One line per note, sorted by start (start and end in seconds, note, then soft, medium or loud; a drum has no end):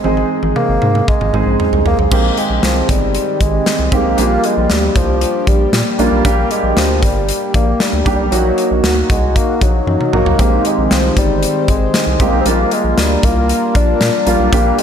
0.00 0.04 G#3 medium
0.00 0.71 G#3 medium
0.00 0.04 C4 medium
0.00 0.72 C4 medium
0.00 0.05 D#4 medium
0.00 0.05 G#4 medium
0.04 0.24 G#1 loud
0.04 0.29 G#3 medium
0.04 0.72 D#4 medium
0.04 0.72 G#4 medium
0.04 high tom soft
0.17 high tom soft
0.43 0.53 G#1 medium
0.43 high tom soft
0.56 1.10 A#3 loud
0.56 mid tom medium
0.69 0.79 G#1 medium
0.82 1.01 G#2 medium
0.82 mid tom medium
0.95 mid tom medium
1.08 1.86 G#3 loud
1.08 kick medium
1.21 1.30 G#1 medium
1.21 mid tom medium
1.33 1.43 G#1 medium
1.33 1.84 G#3 medium
1.33 1.84 C4 medium
1.33 1.84 D#4 medium
1.33 1.85 G#4 medium
1.33 mid tom medium
1.46 1.56 A#1 medium
1.60 floor tom medium
1.72 1.82 C2 medium
1.72 floor tom medium
1.85 1.95 C2 medium
1.85 1.98 A#3 medium
1.85 floor tom medium
1.98 2.08 B1 medium
1.98 floor tom medium
2.11 2.31 A#1 loud
2.11 4.16 D#3 medium
2.11 2.79 G#3 medium
2.11 2.40 A#3 loud
2.11 2.79 C4 medium
2.11 4.16 C4 medium
2.11 2.79 D#4 medium
2.11 8.28 G4 medium
2.11 2.79 G4 medium
2.11 kick loud
2.11 crash medium
2.37 2.64 G#3 medium
2.37 closed hi-hat medium
2.50 2.60 A#1 medium
2.63 2.82 C2 loud
2.63 2.92 F3 medium
2.63 snare loud
2.63 closed hi-hat medium
2.89 3.18 G1 medium
2.89 3.43 G3 loud
2.89 kick medium
2.89 closed hi-hat medium
3.15 closed hi-hat medium
3.40 3.60 G#1 medium
3.40 3.93 G#3 medium
3.40 kick medium
3.40 closed hi-hat medium
3.66 snare loud
3.66 closed hi-hat medium
3.79 3.89 C2 medium
3.92 4.02 C2 medium
3.92 4.09 G#3 medium
3.92 4.17 A#3 medium
3.92 4.09 C4 medium
3.92 4.09 D#4 medium
3.92 4.09 G4 medium
3.92 kick medium
3.92 closed hi-hat medium
4.05 4.15 B1 medium
4.17 4.38 A#1 loud
4.17 6.23 F3 medium
4.17 4.85 G3 medium
4.17 4.85 A#3 medium
4.17 4.47 A#3 loud
4.17 10.35 A#3 medium
4.17 4.86 D4 medium
4.17 8.28 D4 medium
4.17 4.86 F4 medium
4.17 closed hi-hat medium
4.44 4.73 G#3 medium
4.44 closed hi-hat medium
4.57 4.67 A#1 medium
4.70 4.89 D2 medium
4.70 4.98 G3 medium
4.70 snare loud
4.70 closed hi-hat medium
4.96 5.25 C2 medium
4.96 5.50 F3 medium
4.96 kick medium
4.96 closed hi-hat medium
5.21 closed hi-hat medium
5.47 5.67 A#1 medium
5.47 6.01 G3 medium
5.47 kick medium
5.47 closed hi-hat medium
5.73 5.83 A#2 loud
5.73 snare loud
5.73 closed hi-hat medium
5.99 6.09 A#1 medium
5.99 6.16 G3 medium
5.99 6.16 A#3 medium
5.99 6.25 A#3 medium
5.99 6.16 D4 medium
5.99 6.16 F4 medium
5.99 closed hi-hat medium
6.12 6.21 B1 medium
6.24 6.44 A#1 loud
6.24 6.92 G3 medium
6.24 6.92 A#3 medium
6.24 6.53 A#3 loud
6.24 6.93 D4 medium
6.24 6.93 G4 medium
6.24 kick loud
6.24 closed hi-hat loud
6.51 6.76 G#3 medium
6.51 closed hi-hat medium
6.63 6.73 A#1 medium
6.76 7.04 D2 medium
6.76 7.05 F3 medium
6.76 snare loud
6.76 closed hi-hat medium
7.03 7.32 G1 medium
7.03 7.57 G3 loud
7.03 kick medium
7.03 closed hi-hat medium
7.29 closed hi-hat medium
7.54 7.74 A#1 medium
7.54 7.82 A#3 medium
7.54 kick medium
7.54 closed hi-hat medium
7.80 8.15 G3 medium
7.80 snare loud
7.80 closed hi-hat medium
7.93 8.03 D2 medium
8.05 8.16 C2 medium
8.05 8.23 G3 medium
8.05 8.23 A#3 medium
8.05 8.23 D4 medium
8.05 8.23 G4 medium
8.05 kick medium
8.05 closed hi-hat medium
8.16 8.29 B1 medium
8.16 8.23 G3 medium
8.31 8.51 A#1 loud
8.31 8.99 F#3 medium
8.31 8.79 F#3 medium
8.31 8.99 A#3 medium
8.31 8.99 D#4 medium
8.31 12.42 D#4 medium
8.31 10.37 F#4 medium
8.31 9.00 F#4 medium
8.31 closed hi-hat medium
8.58 closed hi-hat medium
8.71 8.81 A#1 medium
8.83 9.03 D2 medium
8.83 snare loud
8.83 closed hi-hat medium
9.10 9.39 C2 medium
9.10 9.38 G#3 medium
9.10 kick medium
9.10 closed hi-hat medium
9.36 9.64 A#3 medium
9.36 kick medium
9.36 closed hi-hat medium
9.61 9.81 A#1 medium
9.61 10.16 F#3 medium
9.61 kick medium
9.61 closed hi-hat medium
9.87 9.97 F#2 loud
9.87 high tom medium
10.01 mid tom medium
10.13 10.23 A#1 loud
10.13 10.30 F#3 medium
10.13 10.30 A#3 medium
10.13 10.40 A#3 medium
10.13 10.30 D#4 medium
10.13 10.30 F#4 medium
10.13 mid tom medium
10.26 10.36 C2 medium
10.26 floor tom medium
10.38 10.58 A#1 loud
10.38 12.44 D#3 medium
10.38 11.06 G#3 medium
10.38 10.64 A#3 loud
10.38 11.06 C4 medium
10.38 12.44 C4 medium
10.38 11.06 D#4 medium
10.38 11.07 G4 medium
10.38 12.44 G4 medium
10.38 12.44 C5 medium
10.38 kick loud
10.38 closed hi-hat medium
10.65 10.94 G#3 medium
10.65 closed hi-hat medium
10.78 10.88 A#1 medium
10.91 11.10 C2 medium
10.91 11.17 F3 medium
10.91 snare loud
10.91 closed hi-hat medium
11.16 11.46 G1 medium
11.16 11.71 G3 medium
11.16 kick medium
11.16 closed hi-hat medium
11.43 closed hi-hat medium
11.68 11.88 G#1 medium
11.68 12.23 G#3 medium
11.68 kick medium
11.68 closed hi-hat medium
11.94 snare loud
11.94 closed hi-hat medium
12.07 12.17 C2 medium
12.20 12.29 C2 loud
12.20 12.37 G#3 medium
12.20 12.40 A#3 medium
12.20 12.37 C4 medium
12.20 12.37 D#4 medium
12.20 12.37 G4 medium
12.20 kick medium
12.20 closed hi-hat medium
12.32 12.42 B1 medium
12.41 12.49 C4 medium
12.45 12.65 A#1 medium
12.45 13.13 G3 medium
12.45 14.83 G3 medium
12.45 13.13 A#3 medium
12.45 14.83 A#3 medium
12.45 12.75 A#3 loud
12.45 13.13 D4 medium
12.45 14.51 D4 medium
12.45 14.51 F4 medium
12.45 13.14 F4 medium
12.45 14.51 A#4 medium
12.45 closed hi-hat medium
12.71 13.01 G#3 medium
12.71 closed hi-hat medium
12.84 12.94 A#1 medium
12.98 13.17 D2 medium
12.98 13.26 G3 medium
12.98 snare loud
12.98 closed hi-hat medium
13.23 13.53 C2 loud
13.23 13.76 A#3 loud
13.23 kick medium
13.23 closed hi-hat medium
13.49 closed hi-hat medium
13.75 13.94 A#1 medium
13.75 14.24 D4 loud
13.75 kick medium
13.75 closed hi-hat medium
14.01 14.10 A#2 medium
14.01 snare loud
14.01 closed hi-hat medium
14.26 14.36 A#1 medium
14.26 14.43 G3 medium
14.26 14.43 A#3 medium
14.26 14.51 A#3 medium
14.26 14.44 D4 medium
14.26 14.44 F4 medium
14.26 closed hi-hat medium
14.39 14.49 B1 medium
14.52 14.72 A#1 loud
14.52 14.83 G3 medium
14.52 14.83 A#3 medium
14.52 14.81 A#3 loud
14.52 14.83 D4 medium
14.52 14.83 G4 medium
14.52 kick loud
14.52 closed hi-hat loud
14.79 14.83 G#3 medium
14.79 closed hi-hat medium